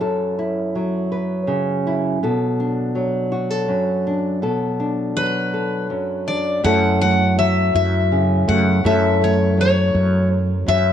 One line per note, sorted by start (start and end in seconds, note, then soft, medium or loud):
0.00 2.22 F#2 soft
0.00 0.42 F#3 soft
0.00 1.11 A4 soft
0.39 1.86 E4 soft
0.75 2.95 F#3 soft
1.12 2.18 B4 soft
1.47 2.17 C#3 soft
1.87 2.19 E4 soft
2.23 3.69 B2 medium
2.23 3.31 A4 medium
2.60 4.06 D4 soft
2.95 5.16 F#3 soft
3.32 3.51 F#4 soft
3.51 4.42 A4 soft
3.68 4.42 F#2 soft
4.07 4.39 D4 soft
4.42 5.90 B2 soft
4.42 5.52 A4 soft
4.80 6.26 D4 soft
5.17 6.60 F#3 soft
5.17 5.86 B4 medium
5.54 6.60 A4 soft
5.90 6.62 F#2 soft
6.27 6.60 D4 soft
6.27 6.64 D5 medium
6.64 8.83 F#2 medium
6.64 7.71 F#2 medium
6.64 7.01 A3 medium
6.64 7.74 E4 medium
6.64 8.81 A4 medium
6.64 7.00 F#5 medium
7.01 8.46 A3 soft
7.01 7.38 F#5 medium
7.38 8.88 F#3 soft
7.38 7.74 E5 medium
7.75 8.44 F#2 medium
7.75 8.80 E4 soft
7.75 8.48 E5 medium
8.12 8.80 C#3 soft
8.48 8.82 F#2 medium
8.48 8.83 A3 soft
8.48 8.86 F#5 medium
8.84 10.65 F#2 medium
8.84 9.90 F#2 medium
8.84 9.21 A3 medium
8.84 10.93 E4 medium
8.84 10.93 A4 medium
8.84 9.23 E5 medium
9.22 10.93 A3 soft
9.22 9.60 C#5 medium
9.57 10.93 F#3 soft
9.57 10.28 C#5 medium
9.95 10.63 F#2 medium
10.66 10.93 F#2 soft
10.66 10.93 F#2 medium
10.66 10.93 E5 medium